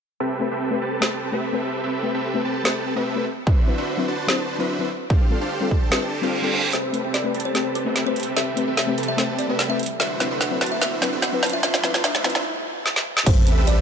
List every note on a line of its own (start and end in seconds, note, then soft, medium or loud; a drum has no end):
0.20 0.49 C4 medium
0.20 0.49 G4 medium
0.20 0.49 A4 medium
0.20 0.49 B4 medium
0.20 0.49 E5 medium
0.40 0.51 A3 medium
0.40 0.51 C4 medium
0.40 0.51 G4 medium
0.40 0.52 B4 medium
0.51 0.79 C4 medium
0.51 0.79 G4 medium
0.51 0.79 A4 medium
0.51 0.79 B4 medium
0.51 0.79 E5 medium
0.71 0.81 A3 medium
0.71 0.81 C4 medium
0.71 0.81 G4 medium
0.71 0.82 B4 loud
0.81 1.30 C4 medium
0.81 1.30 G4 medium
0.81 1.30 A4 medium
0.81 1.30 B4 medium
0.81 1.30 A5 medium
1.01 1.12 A3 medium
1.01 1.12 C4 medium
1.01 1.12 G4 medium
1.01 1.13 C5 loud
1.01 snare loud
1.32 1.50 A3 medium
1.32 1.51 C4 medium
1.32 1.81 C4 medium
1.32 1.81 G4 medium
1.32 1.51 G4 medium
1.32 1.81 A4 medium
1.32 1.81 B4 medium
1.32 1.51 B4 medium
1.32 1.81 E5 medium
1.52 1.62 A3 medium
1.52 1.63 C4 medium
1.52 1.63 G4 medium
1.52 1.63 B4 medium
1.83 2.12 C4 medium
1.83 2.12 G4 medium
1.83 2.12 A4 medium
1.83 2.12 B4 medium
1.83 2.12 E5 medium
2.03 2.14 A3 medium
2.03 2.14 C4 medium
2.03 2.14 G4 medium
2.03 2.15 B4 medium
2.15 2.42 C4 medium
2.15 2.42 G4 medium
2.15 2.42 A4 medium
2.15 2.42 B4 medium
2.15 2.42 E5 medium
2.34 2.44 A3 medium
2.34 2.44 C4 medium
2.34 2.45 G4 medium
2.34 2.45 B4 loud
2.45 2.94 C4 medium
2.45 2.94 G4 medium
2.45 2.94 A4 medium
2.45 2.94 B4 medium
2.45 2.94 A5 medium
2.64 2.75 A3 medium
2.64 2.75 C4 medium
2.64 2.76 G4 medium
2.64 2.76 C5 loud
2.64 snare loud
2.95 3.14 A3 medium
2.95 3.14 C4 medium
2.95 3.25 C4 medium
2.95 3.25 G4 medium
2.95 3.14 G4 medium
2.95 3.25 A4 medium
2.95 3.25 B4 medium
2.95 3.15 B4 medium
2.95 3.25 E5 medium
3.16 3.25 A3 medium
3.16 3.25 C4 medium
3.16 3.25 G4 medium
3.16 3.26 B4 medium
3.47 3.75 D4 medium
3.47 3.75 F#4 medium
3.47 3.75 B4 medium
3.47 3.75 C5 medium
3.47 3.75 E5 medium
3.47 kick loud
3.66 3.77 F#3 medium
3.66 3.77 C4 medium
3.66 3.78 E4 medium
3.66 3.78 B4 medium
3.78 4.06 D4 medium
3.78 4.06 F#4 medium
3.78 4.06 B4 medium
3.78 4.06 C5 medium
3.78 4.06 E5 medium
3.97 4.07 F#3 medium
3.97 4.08 C4 medium
3.97 4.08 E4 medium
3.97 4.08 B4 loud
4.08 4.57 D4 medium
4.08 4.57 F#4 medium
4.08 4.57 B4 medium
4.08 4.57 C5 medium
4.08 4.57 A5 loud
4.27 4.38 F#3 loud
4.27 4.39 C4 medium
4.27 4.39 E4 medium
4.27 4.39 C5 loud
4.27 snare loud
4.59 4.77 F#3 medium
4.59 4.77 C4 medium
4.59 4.89 D4 medium
4.59 4.78 E4 medium
4.59 4.89 F#4 medium
4.59 4.89 B4 medium
4.59 4.78 B4 medium
4.59 4.89 C5 medium
4.59 4.89 E5 medium
4.79 4.88 F#3 medium
4.79 4.88 C4 medium
4.79 4.89 E4 medium
4.79 4.89 B4 medium
5.10 5.39 D4 medium
5.10 5.39 G4 medium
5.10 5.39 A4 medium
5.10 5.39 C5 medium
5.10 5.39 F5 medium
5.10 kick loud
5.29 5.40 G3 medium
5.29 5.41 C4 medium
5.29 5.41 F4 medium
5.29 5.41 A4 medium
5.41 5.69 D4 medium
5.41 5.69 G4 medium
5.41 5.69 A4 medium
5.41 5.69 C5 medium
5.41 5.69 F5 medium
5.61 5.71 G3 medium
5.61 5.71 C4 medium
5.61 5.71 F4 medium
5.61 5.72 A4 loud
5.71 6.20 D4 medium
5.71 6.20 G4 medium
5.71 6.20 A4 medium
5.71 kick medium
5.91 6.02 G3 medium
5.91 6.02 C4 medium
5.91 6.02 F4 medium
5.91 6.03 B4 loud
5.91 snare loud
5.91 reverse cymbal medium
6.22 6.40 G3 medium
6.22 6.40 C4 medium
6.22 6.41 D4 medium
6.22 6.41 F4 medium
6.22 6.41 G4 medium
6.22 6.41 A4 medium
6.22 6.41 C5 medium
6.22 6.41 F5 medium
6.42 6.52 G3 medium
6.42 6.53 C4 medium
6.42 6.51 D4 medium
6.42 6.53 F4 medium
6.42 6.51 G4 medium
6.42 6.51 A4 medium
6.42 6.53 A4 medium
6.42 6.51 C5 medium
6.42 6.51 F5 medium
6.53 6.61 D4 medium
6.53 6.61 G4 medium
6.53 6.61 A4 medium
6.53 6.61 C5 medium
6.53 6.61 F5 loud
6.64 6.71 D4 medium
6.64 6.71 G4 medium
6.64 6.71 A4 medium
6.64 6.71 C5 medium
6.64 6.71 G5 medium
6.73 7.95 A1 loud
6.73 13.22 C3 medium
6.73 9.76 A3 medium
6.73 7.02 C4 medium
6.73 7.02 G4 medium
6.73 9.76 G4 medium
6.73 7.02 A4 medium
6.73 11.39 A4 medium
6.73 7.02 B4 medium
6.73 7.09 C5 medium
6.73 7.02 E5 medium
6.73 snare soft
6.73 closed hi-hat medium
6.73 riser medium
6.93 7.04 A3 medium
6.93 7.04 C4 medium
6.93 7.04 G4 medium
6.93 7.05 B4 medium
6.93 closed hi-hat medium
7.04 7.32 C4 medium
7.04 7.32 G4 medium
7.04 7.32 A4 medium
7.04 7.32 B4 medium
7.04 7.32 E5 medium
7.14 7.41 D5 medium
7.14 snare soft
7.14 closed hi-hat medium
7.24 7.34 A3 medium
7.24 7.34 C4 medium
7.24 7.34 G4 medium
7.24 7.35 B4 loud
7.35 7.84 C4 medium
7.35 7.84 G4 medium
7.35 7.84 A4 medium
7.35 7.84 B4 medium
7.35 7.84 A5 medium
7.35 closed hi-hat soft
7.40 closed hi-hat medium
7.45 7.72 C5 medium
7.54 7.65 A3 loud
7.54 7.65 C4 medium
7.54 7.66 G4 medium
7.54 7.66 C5 loud
7.54 snare soft
7.54 closed hi-hat medium
7.75 8.03 B4 medium
7.75 closed hi-hat medium
7.85 8.03 A3 medium
7.85 8.04 C4 medium
7.85 8.34 C4 medium
7.85 8.34 G4 medium
7.85 8.04 G4 medium
7.85 8.34 A4 medium
7.85 8.34 B4 medium
7.85 8.04 B4 medium
7.85 8.34 E5 medium
7.96 snare medium
7.96 closed hi-hat medium
8.05 8.15 A3 medium
8.05 8.16 C4 medium
8.05 8.16 G4 medium
8.05 8.16 B4 medium
8.05 8.33 C5 medium
8.16 9.17 E1 medium
8.16 closed hi-hat soft
8.20 closed hi-hat medium
8.23 closed hi-hat medium
8.37 8.65 C4 medium
8.37 8.65 G4 medium
8.37 8.65 A4 medium
8.37 8.65 B4 medium
8.37 8.65 E5 medium
8.37 8.73 E5 loud
8.37 snare medium
8.37 closed hi-hat medium
8.56 8.67 A3 medium
8.56 8.67 C4 medium
8.56 8.68 G4 medium
8.56 8.68 B4 medium
8.56 closed hi-hat medium
8.68 8.95 C4 medium
8.68 8.95 G4 medium
8.68 8.95 A4 medium
8.68 8.95 B4 medium
8.68 8.95 E5 medium
8.77 9.05 E5 medium
8.77 snare medium
8.77 closed hi-hat medium
8.87 8.97 A3 medium
8.87 8.97 C4 medium
8.87 8.98 G4 medium
8.87 8.98 B4 loud
8.98 9.47 C4 medium
8.98 9.47 G4 medium
8.98 9.47 A4 medium
8.98 9.47 B4 medium
8.98 9.47 A5 medium
8.98 closed hi-hat soft
9.03 closed hi-hat medium
9.08 9.35 E5 medium
9.17 9.51 E1 medium
9.17 9.28 A3 loud
9.17 9.28 C4 medium
9.17 9.29 G4 medium
9.17 9.29 C5 loud
9.17 snare medium
9.17 closed hi-hat medium
9.39 9.66 D5 medium
9.39 closed hi-hat medium
9.48 9.78 A1 loud
9.48 9.67 A3 medium
9.48 9.67 C4 medium
9.48 9.78 C4 medium
9.48 9.78 G4 medium
9.48 9.67 G4 medium
9.48 9.78 A4 medium
9.48 9.78 B4 medium
9.48 9.68 B4 loud
9.48 9.78 E5 medium
9.59 snare medium
9.59 closed hi-hat medium
9.69 9.78 A3 medium
9.69 9.78 C4 medium
9.69 9.78 G4 medium
9.69 9.79 B4 medium
9.69 9.96 E5 medium
9.79 11.41 F#3 medium
9.79 11.41 E4 medium
9.79 closed hi-hat soft
9.83 closed hi-hat medium
9.86 closed hi-hat medium
10.00 10.28 D4 medium
10.00 10.28 F#4 medium
10.00 10.28 B4 medium
10.00 10.28 C5 medium
10.00 10.36 E5 medium
10.00 10.28 E5 medium
10.00 snare medium
10.00 closed hi-hat medium
10.19 10.30 F#3 medium
10.19 10.31 C4 medium
10.19 10.31 E4 medium
10.19 10.31 B4 medium
10.19 snare medium
10.19 closed hi-hat medium
10.31 10.59 D4 medium
10.31 10.59 F#4 medium
10.31 10.59 B4 medium
10.31 10.59 C5 medium
10.31 10.59 E5 medium
10.41 10.68 F#5 medium
10.41 snare medium
10.41 closed hi-hat medium
10.50 10.60 F#3 medium
10.50 10.61 C4 medium
10.50 10.61 E4 medium
10.50 10.61 B4 loud
10.61 10.80 D4 medium
10.61 10.80 F#4 medium
10.61 10.80 B4 medium
10.61 10.80 C5 medium
10.61 10.80 A5 medium
10.61 snare medium
10.61 closed hi-hat medium
10.66 closed hi-hat medium
10.72 10.80 E5 medium
10.81 11.10 D4 medium
10.81 11.10 F#4 medium
10.81 11.10 B4 medium
10.81 11.10 C5 medium
10.81 11.18 E5 loud
10.81 11.10 E5 medium
10.81 snare medium
10.81 closed hi-hat medium
11.01 11.12 F#3 medium
11.01 11.12 C4 medium
11.01 11.12 E4 medium
11.01 11.13 B4 medium
11.01 snare medium
11.01 closed hi-hat medium
11.13 11.40 D4 medium
11.13 11.40 F#4 medium
11.13 11.40 B4 medium
11.13 11.40 C5 medium
11.13 11.40 E5 medium
11.22 11.50 F#5 medium
11.22 snare medium
11.22 closed hi-hat medium
11.32 11.42 F#3 medium
11.32 11.42 C4 medium
11.32 11.43 E4 medium
11.32 11.43 B4 loud
11.43 12.44 G2 loud
11.43 13.25 G3 medium
11.43 13.25 A3 medium
11.43 11.62 D4 medium
11.43 13.25 F4 medium
11.43 11.62 F4 medium
11.43 11.62 B4 medium
11.43 11.62 C5 medium
11.43 11.62 A5 medium
11.43 snare medium
11.43 closed hi-hat soft
11.46 closed hi-hat medium
11.50 11.62 E5 medium
11.50 closed hi-hat medium
11.63 11.92 D4 medium
11.63 11.92 F4 medium
11.63 11.92 B4 medium
11.63 11.92 C5 medium
11.63 11.92 E5 medium
11.63 11.99 E5 loud
11.63 snare medium
11.63 closed hi-hat medium
11.74 snare medium
11.82 11.93 F3 medium
11.82 11.94 C4 medium
11.82 11.94 E4 medium
11.82 11.94 B4 medium
11.82 snare medium
11.82 closed hi-hat medium
11.94 12.02 D4 medium
11.94 12.02 F4 medium
11.94 12.02 B4 medium
11.94 12.02 C5 medium
11.94 12.02 E5 medium
11.94 snare medium
12.04 12.33 D4 medium
12.04 12.33 F4 medium
12.04 12.33 B4 medium
12.04 12.33 C5 medium
12.04 12.40 E5 loud
12.04 12.33 E5 medium
12.04 snare loud
12.04 closed hi-hat medium
12.15 snare medium
12.23 12.34 F3 medium
12.23 12.35 C4 medium
12.23 12.35 E4 medium
12.23 12.35 B4 medium
12.23 snare medium
12.23 closed hi-hat soft
12.30 closed hi-hat medium
12.35 12.43 D4 medium
12.35 12.43 F4 medium
12.35 12.43 B4 medium
12.35 12.43 C5 medium
12.35 12.43 E5 medium
12.35 snare medium
12.86 snare medium
12.96 snare medium
13.17 snare medium
13.26 13.81 A1 loud
13.26 13.55 C4 medium
13.26 13.55 G4 medium
13.26 13.55 A4 medium
13.26 13.55 B4 medium
13.26 13.63 C5 loud
13.26 13.55 E5 loud
13.26 kick loud
13.26 closed hi-hat medium
13.26 crash loud
13.26 sub drop medium
13.47 closed hi-hat medium
13.58 13.81 C4 medium
13.58 13.81 G4 medium
13.58 13.81 A4 medium
13.58 13.81 B4 medium
13.58 13.81 E5 medium
13.67 13.81 D5 loud
13.67 closed hi-hat medium